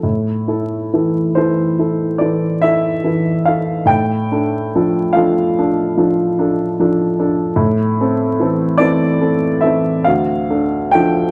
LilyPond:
\new Staff \with { instrumentName = "Grand piano" } { \time 9/8 \key d \dorian \tempo 4. = 47 << { r4. c''4 d''8 e''4 f''8 | g''4. f''2~ f''8 r8 | r4. d''4 e''8 f''4 g''8 | } \\ { a,8 <e' a'>8 <e e' a'>8 <e e' a'>8 <e' a'>8 <e e' a'>8 <e' a'>8 <e e' a'>8 <e' a'>8 | a,8 <d' a'>8 <f d' a'>8 <f d' a'>8 <d' a'>8 <f d' a'>8 <d' a'>8 <f d' a'>8 <d' a'>8 | a,8 <c' a'>8 <e c' a'>8 <e c' a'>8 <c' a'>8 <e c' a'>8 d,8 <d' a'>8 <f d' a'>8 | } >> }